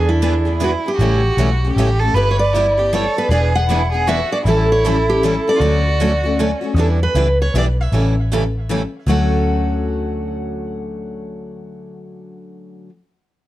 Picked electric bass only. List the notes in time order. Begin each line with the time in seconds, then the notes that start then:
Already playing: E2
0.99 A1
1.37 B1
1.76 A1
2.14 G1
3.29 E1
4.45 A1
5.60 D2
6.74 E2
7.15 C#2
7.54 B1
7.92 A1
9.07 D2